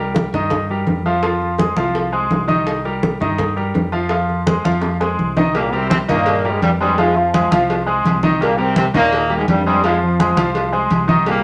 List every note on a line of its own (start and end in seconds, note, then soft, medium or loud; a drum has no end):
0.00 0.27 C2 medium
0.00 0.27 G3 medium
0.00 0.27 G4 medium
0.00 0.27 A#4 medium
0.15 high bongo medium
0.15 high conga loud
0.33 0.83 G2 medium
0.33 0.63 D#3 medium
0.33 0.63 D#4 medium
0.33 0.64 D#5 medium
0.33 high bongo soft
0.33 high conga soft
0.33 low conga medium
0.50 high bongo medium
0.50 high conga soft
0.50 low conga medium
0.69 0.99 G3 medium
0.69 0.99 G4 medium
0.69 1.00 A#4 medium
0.69 high conga soft
0.86 1.71 F2 medium
0.86 high bongo soft
0.86 low bongo medium
0.86 high conga medium
1.05 1.20 F3 medium
1.05 1.20 F4 medium
1.05 1.21 F5 medium
1.05 high bongo soft
1.05 high conga soft
1.23 1.53 F3 medium
1.23 1.53 F4 medium
1.23 1.53 F5 medium
1.23 high bongo medium
1.23 high conga soft
1.40 high bongo soft
1.40 high conga soft
1.58 1.74 G#3 medium
1.58 1.74 G#4 medium
1.58 1.74 C5 medium
1.58 high bongo medium
1.58 high conga loud
1.76 2.27 C2 loud
1.76 2.07 F3 medium
1.76 2.07 F4 medium
1.76 2.07 F5 medium
1.76 high bongo soft
1.76 high conga loud
1.95 high bongo medium
1.95 high conga soft
2.12 2.42 G#3 medium
2.12 2.43 G#4 medium
2.12 2.42 C5 medium
2.12 high conga soft
2.30 3.15 C2 medium
2.30 high bongo soft
2.30 low bongo medium
2.30 high conga medium
2.48 2.78 D#3 medium
2.48 2.78 D#4 medium
2.48 2.78 D#5 medium
2.48 high bongo soft
2.48 high conga medium
2.67 high bongo medium
2.67 high conga soft
2.84 3.14 G3 medium
2.84 3.15 G4 medium
2.84 3.15 A#4 medium
2.84 high bongo soft
2.84 high conga soft
3.03 high bongo medium
3.03 high conga loud
3.20 3.71 G2 loud
3.20 3.50 D#3 medium
3.20 3.50 D#4 medium
3.20 3.51 D#5 medium
3.20 high bongo soft
3.20 high conga soft
3.20 low conga medium
3.38 high bongo medium
3.38 high conga soft
3.38 low conga medium
3.56 3.86 G3 medium
3.56 3.86 G4 medium
3.56 3.86 A#4 medium
3.56 high conga soft
3.74 4.58 F2 medium
3.74 high bongo soft
3.74 low bongo medium
3.74 high conga medium
3.92 4.07 F3 medium
3.92 4.07 F4 medium
3.92 4.08 F5 medium
3.92 high bongo soft
3.92 high conga soft
4.09 4.40 F3 medium
4.09 4.40 F4 medium
4.09 4.40 F5 medium
4.09 high bongo medium
4.09 high conga soft
4.29 high bongo soft
4.29 high conga soft
4.46 4.61 G#3 medium
4.46 4.62 G#4 medium
4.46 4.62 C5 medium
4.46 high bongo medium
4.46 high conga loud
4.64 5.15 F2 loud
4.64 4.94 F3 medium
4.64 4.94 F4 medium
4.64 4.94 F5 medium
4.64 high bongo soft
4.64 high conga loud
4.81 high bongo loud
4.81 high conga soft
5.00 5.30 G#3 medium
5.00 5.30 G#4 medium
5.00 5.30 C5 medium
5.00 high bongo medium
5.00 high conga soft
5.18 6.02 C2 medium
5.18 high conga medium
5.37 5.51 D#3 medium
5.37 5.51 D#4 medium
5.37 5.52 D#5 loud
5.37 low bongo loud
5.37 high conga medium
5.54 5.72 A#2 medium
5.54 5.69 G3 medium
5.54 5.72 A#3 loud
5.54 5.69 G4 medium
5.54 5.69 A#4 medium
5.54 cowbell loud
5.54 high conga soft
5.72 5.90 C3 medium
5.72 6.02 G3 medium
5.72 5.89 C4 loud
5.72 6.02 G4 medium
5.72 6.02 A#4 medium
5.72 high conga soft
5.90 5.99 C3 medium
5.90 5.98 C4 loud
5.90 cowbell medium
5.90 high conga loud
6.08 6.58 G2 medium
6.08 6.48 A#2 medium
6.08 6.38 D#3 medium
6.08 6.48 A#3 loud
6.08 6.38 D#4 loud
6.08 6.38 D#5 loud
6.08 cowbell medium
6.08 high conga soft
6.08 low conga medium
6.26 cowbell loud
6.26 high conga soft
6.45 6.74 G3 medium
6.45 6.74 G4 medium
6.45 6.74 A#4 medium
6.45 high conga soft
6.51 6.63 G#2 medium
6.51 6.62 G#3 loud
6.62 7.46 F2 medium
6.62 6.71 G2 medium
6.62 6.70 G3 loud
6.62 cowbell medium
6.62 high conga medium
6.80 6.97 G2 medium
6.80 6.97 G3 medium
6.80 6.95 G#3 medium
6.80 6.96 G#4 medium
6.80 6.95 C5 medium
6.80 high conga soft
6.98 7.15 G#2 medium
6.98 7.27 F3 medium
6.98 7.15 G#3 loud
6.98 7.28 F4 medium
6.98 7.28 F5 medium
6.98 cowbell loud
6.98 high conga soft
7.16 7.88 F3 medium
7.16 7.88 F4 medium
7.16 high conga soft
7.34 7.48 G#3 medium
7.34 7.49 G#4 medium
7.34 7.49 C5 medium
7.34 cowbell medium
7.34 high conga loud
7.51 8.01 C2 loud
7.51 7.81 F3 medium
7.51 7.81 F4 loud
7.51 7.81 F5 medium
7.51 cowbell medium
7.51 high conga loud
7.70 cowbell loud
7.70 high conga soft
7.86 8.16 G#3 medium
7.86 8.16 G#4 medium
7.86 8.17 C5 medium
7.86 high conga soft
8.04 8.88 C2 loud
8.04 cowbell medium
8.04 high conga medium
8.23 8.38 D#3 loud
8.23 8.38 D#4 loud
8.23 8.38 D#5 medium
8.23 high conga medium
8.41 8.58 A#2 medium
8.41 8.55 G3 medium
8.41 8.58 A#3 loud
8.41 8.55 G4 medium
8.41 8.56 A#4 medium
8.41 cowbell loud
8.41 high conga soft
8.57 8.77 C3 medium
8.57 8.87 G3 medium
8.57 8.77 C4 loud
8.57 8.88 G4 medium
8.57 8.88 A#4 medium
8.57 high conga soft
8.76 8.86 C3 medium
8.76 8.86 C4 loud
8.76 cowbell medium
8.76 high conga loud
8.94 9.44 D#2 loud
8.94 9.34 A#2 medium
8.94 9.24 D#3 medium
8.94 9.34 A#3 loud
8.94 9.24 D#4 medium
8.94 9.24 D#5 loud
8.94 cowbell medium
8.94 high conga soft
8.94 low conga medium
9.13 cowbell loud
9.13 high conga soft
9.29 9.59 G3 medium
9.29 9.59 G4 medium
9.29 9.59 A#4 medium
9.29 high conga soft
9.37 9.48 G#2 medium
9.37 9.48 G#3 loud
9.48 10.32 F2 loud
9.48 9.65 G2 medium
9.48 9.65 G3 loud
9.48 cowbell medium
9.48 high conga medium
9.66 9.83 G2 medium
9.66 9.83 G3 medium
9.66 9.81 G#3 medium
9.66 9.81 G#4 medium
9.66 9.81 C5 medium
9.66 high conga soft
9.84 10.01 G#2 medium
9.84 10.13 F3 medium
9.84 10.01 G#3 loud
9.84 10.13 F4 medium
9.84 10.14 F5 medium
9.84 cowbell loud
9.84 high conga soft
10.02 10.70 F3 medium
10.02 10.70 F4 medium
10.02 high conga soft
10.19 10.34 G#3 medium
10.19 10.34 G#4 medium
10.19 10.34 C5 medium
10.19 cowbell medium
10.19 high conga loud
10.36 10.87 C2 loud
10.36 10.67 F3 medium
10.36 10.66 F4 medium
10.36 10.67 F5 loud
10.36 cowbell medium
10.36 high conga loud
10.55 cowbell loud
10.55 high conga soft
10.72 11.02 G#3 medium
10.72 11.02 G#4 medium
10.72 11.03 C5 medium
10.72 high conga soft
10.90 11.44 C2 loud
10.90 cowbell medium
10.90 high conga medium
11.08 11.23 D#3 medium
11.08 11.24 D#4 loud
11.08 11.24 D#5 medium
11.08 high conga medium
11.26 11.44 A#2 medium
11.26 11.41 G3 medium
11.26 11.44 A#3 loud
11.26 11.42 G4 medium
11.26 11.42 A#4 medium
11.26 cowbell loud
11.26 high conga soft